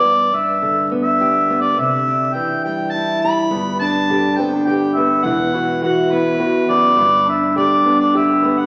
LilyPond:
<<
  \new Staff \with { instrumentName = "Harmonica" } { \time 3/4 \key g \major \tempo 4 = 104 d''8 e''8~ \tuplet 3/2 { e''8. r16 e''8~ e''4 d''8 } | e''4 g''8 g''8 a''8 b''8~ | b''8 a''4 g''8 g''8 e''8 | fis''4 fis''8 b'4 d''8~ |
d''8 e''8 d''8. d''16 e''8. fis''16 | }
  \new Staff \with { instrumentName = "Upright piano" } { \time 3/4 \key g \major r2. | r2. | b8 d'8 g'8 c'16 d'16 g'8 b8 | e8 e'8 fis'8 e'8 fis'8 b8 |
b8 d'8 g'8 d'8 g'8 b8 | }
  \new Staff \with { instrumentName = "Steel-string acoustic guitar" } { \time 3/4 \key g \major << { r8 d'4 b8 g'8 b8 | r8 d'4 g8 e'8 g8~ | g8 d'4 b8 g'8 b8 | r8 fis'4 b4. |
r8 d'4 b8 g'8 b8 | } \\ { g,4 d2 | c4 e2 | g,4 d2 | e,4 e4 e,8 fis,8 |
g,4 d2 | } >> }
  \new Staff \with { instrumentName = "Upright bass" } { \clef bass \time 3/4 \key g \major r2. | r2. | g,,2 r4 | e,,2 r4 |
g,,2 r4 | }
>>